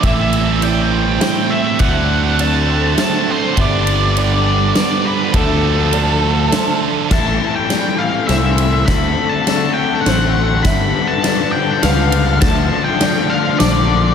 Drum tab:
CC |------|------|------|------|
RD |xxx-x-|x-x-x-|xxx-x-|x-x-x-|
SD |----o-|----o-|----o-|----o-|
BD |o-----|o-----|o-----|o-----|

CC |x-----|------|------|------|
RD |--x-xx|x-x-x-|x-x-xx|x-x-x-|
SD |o-o-o-|o-o-o-|o-o-o-|o-o-o-|
BD |o-----|o-----|o-----|o-----|